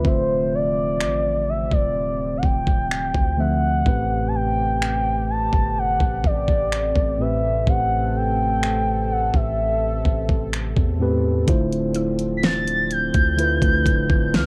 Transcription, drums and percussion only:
0.05 kick
1.01 finger snap
1.72 kick
2.43 kick
2.67 kick
2.91 finger snap
3.15 kick
3.86 kick
4.82 finger snap
5.53 kick
6.00 kick
6.24 kick
6.48 kick
6.72 finger snap
6.96 kick
7.67 kick
8.63 finger snap
9.34 kick
10.05 kick
10.29 kick
10.53 finger snap
10.76 kick
11.48 kick, closed hi-hat
11.73 closed hi-hat
11.95 closed hi-hat
12.19 closed hi-hat
12.43 snare, closed hi-hat
12.68 closed hi-hat
12.91 closed hi-hat
13.14 kick, closed hi-hat
13.39 closed hi-hat
13.62 kick, closed hi-hat
13.86 kick, closed hi-hat
14.10 kick
14.34 snare, closed hi-hat

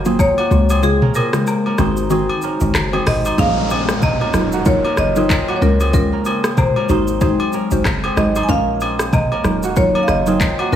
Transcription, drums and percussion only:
0.05 shaker
0.19 kick, low woodblock, shaker
0.38 high agogo
0.51 shaker
0.69 high agogo, shaker
0.83 shaker
1.02 mid tom
1.14 high agogo, shaker
1.33 cross-stick, shaker
1.47 low woodblock, shaker
1.66 high agogo
1.78 cross-stick, shaker
1.97 shaker
2.10 shaker
2.29 high agogo
2.42 shaker
2.60 shaker
2.75 cross-stick, clap, low woodblock, shaker
2.93 high agogo
3.06 cross-stick, mid tom, open hi-hat, shaker
3.25 high agogo, shaker
3.38 kick, shaker
3.70 high agogo, shaker
3.89 cross-stick, shaker
4.02 kick, mid tom, low woodblock, shaker
4.21 high agogo
4.34 cross-stick, shaker
4.52 shaker
4.65 kick, shaker
4.85 high agogo
4.97 cross-stick, shaker
5.16 shaker
5.30 kick, clap, low woodblock, shaker
5.48 high agogo
5.62 shaker
5.80 high agogo, shaker
5.93 kick, shaker
6.25 high agogo, shaker
6.44 cross-stick, shaker
6.57 kick, mid tom, low woodblock, shaker
6.76 high agogo
6.89 shaker
7.08 shaker
7.21 kick, shaker
7.40 high agogo
7.53 shaker
7.71 shaker
7.85 kick, cross-stick, clap, low woodblock, shaker
8.04 high agogo
8.17 cross-stick, shaker
8.35 high agogo, shaker
8.49 kick, shaker
8.80 high agogo, shaker
8.99 cross-stick, shaker
9.13 kick, mid tom, low woodblock, shaker
9.32 high agogo
9.44 cross-stick, shaker
9.63 shaker
9.76 kick, shaker
9.95 high agogo
10.08 cross-stick, shaker
10.26 shaker
10.40 kick, clap, low woodblock, shaker
10.59 high agogo
10.73 shaker

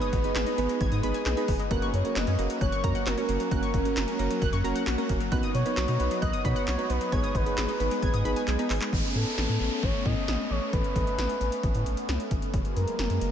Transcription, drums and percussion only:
0.02 closed hi-hat
0.13 kick, closed hi-hat
0.24 closed hi-hat
0.35 snare, clap, closed hi-hat
0.46 closed hi-hat
0.58 closed hi-hat
0.69 closed hi-hat
0.81 kick, closed hi-hat
0.92 closed hi-hat
1.03 closed hi-hat
1.14 closed hi-hat
1.26 snare, clap, closed hi-hat
1.37 closed hi-hat
1.48 kick, open hi-hat
1.59 closed hi-hat
1.71 kick, closed hi-hat
1.82 closed hi-hat
1.94 closed hi-hat
2.05 closed hi-hat
2.16 snare, clap, closed hi-hat
2.27 closed hi-hat
2.39 closed hi-hat
2.50 closed hi-hat
2.61 kick, closed hi-hat
2.72 closed hi-hat
2.84 kick, closed hi-hat
2.95 closed hi-hat
3.06 snare, clap, closed hi-hat
3.18 closed hi-hat
3.29 closed hi-hat
3.40 closed hi-hat
3.51 kick, closed hi-hat
3.63 closed hi-hat
3.74 kick, closed hi-hat
3.85 closed hi-hat
3.97 snare, clap, closed hi-hat
4.08 closed hi-hat
4.19 closed hi-hat
4.31 closed hi-hat
4.42 kick, closed hi-hat
4.53 closed hi-hat
4.65 closed hi-hat
4.76 closed hi-hat
4.87 snare, clap, closed hi-hat
4.98 closed hi-hat
5.09 kick, closed hi-hat
5.21 closed hi-hat
5.32 kick, closed hi-hat
5.43 closed hi-hat
5.55 closed hi-hat
5.66 closed hi-hat
5.77 snare, clap, closed hi-hat
5.88 closed hi-hat
6.00 closed hi-hat
6.11 closed hi-hat
6.22 kick, closed hi-hat
6.33 closed hi-hat
6.45 kick, closed hi-hat
6.56 closed hi-hat
6.68 snare, clap, closed hi-hat
6.79 closed hi-hat
6.90 closed hi-hat
7.01 closed hi-hat
7.12 kick, closed hi-hat
7.24 closed hi-hat
7.35 kick, closed hi-hat
7.46 closed hi-hat
7.58 snare, clap, closed hi-hat
7.69 closed hi-hat
7.80 closed hi-hat
7.91 closed hi-hat
8.03 kick, closed hi-hat
8.14 closed hi-hat
8.25 closed hi-hat
8.36 closed hi-hat
8.48 clap, closed hi-hat
8.59 closed hi-hat
8.70 clap, open hi-hat
8.81 clap, closed hi-hat
8.93 kick
9.38 snare
9.83 kick
10.06 kick
10.28 snare
10.73 kick, closed hi-hat
10.84 closed hi-hat
10.96 kick, closed hi-hat
11.07 closed hi-hat
11.19 snare, closed hi-hat
11.29 closed hi-hat
11.41 closed hi-hat
11.52 closed hi-hat
11.63 kick, closed hi-hat
11.75 closed hi-hat
11.86 closed hi-hat
11.97 closed hi-hat
12.09 snare, closed hi-hat
12.20 closed hi-hat
12.31 kick, closed hi-hat
12.42 closed hi-hat
12.54 kick, closed hi-hat
12.65 closed hi-hat
12.77 closed hi-hat
12.88 closed hi-hat
12.99 snare, closed hi-hat
13.10 closed hi-hat
13.21 closed hi-hat

